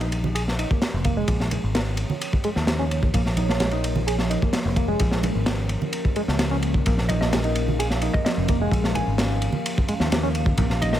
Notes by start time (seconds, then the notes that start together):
Already playing: A#1 F3 A#3 C#4 A#4 C#5
0.01 D#4, ride
0.12 ride
0.24 low conga
0.35 G#4, ride
0.48 snare
0.58 D#4, ride
0.70 A#3, kick
0.82 snare, ride
0.94 F1
1.04 A#3, kick, ride
1.17 G#3
1.28 A#1, kick, ride
1.40 snare
1.51 ride, high conga
1.64 G#1
1.75 A#3, snare, ride
1.97 ride
2.10 low conga
2.21 ride
2.33 kick
2.44 G#3, ride
2.56 D#2, snare
2.67 snare, ride
2.79 C#4
2.91 ride
3.03 kick
3.14 A#1 A#3, kick, ride
3.26 snare
3.37 D#4, ride, high conga
3.49 A#3, snare
3.60 G#3, snare, ride
3.71 D#4, ride
3.84 ride
3.96 low conga
4.07 G#4, ride
4.19 snare
4.30 D#4, ride
4.42 A#3, kick
4.53 snare, ride
4.65 F1
4.76 A#3, kick, ride
4.89 G#3
4.99 A#1, kick, ride
5.11 snare
5.23 ride, high conga
5.35 G#1
5.46 A#3, snare, ride
5.69 ride
5.82 low conga
5.93 ride
6.05 kick
6.16 G#3, ride
6.28 C#2, snare
6.39 snare, ride
6.51 C#4
6.63 ride
6.74 kick
6.86 A#1 A#3 F5, kick, ride
6.98 snare
7.09 D#4 D#5, ride, high conga
7.21 A#3 D#5, snare
7.33 G#3, snare, ride
7.44 D#4, ride
7.55 ride
7.68 low conga
7.79 G#4, ride
7.90 snare
8.02 D#4, ride
8.14 A#3 D#5, kick
8.25 D#5, snare, ride
8.38 F1
8.48 A#3, kick, ride
8.61 G#3
8.71 A#1, kick, ride
8.84 snare
8.95 G#5, ride, high conga
9.07 G#1
9.18 A#3, snare, ride
9.42 ride
9.53 low conga
9.66 ride
9.78 kick
9.88 G#3, ride
10.00 D#2, snare
10.12 snare, ride
10.23 C#4
10.35 ride
10.46 kick
10.58 A#1 A#3, kick, ride
10.70 snare
10.81 D#4 D#5, ride, high conga
10.93 A#3 D#5, snare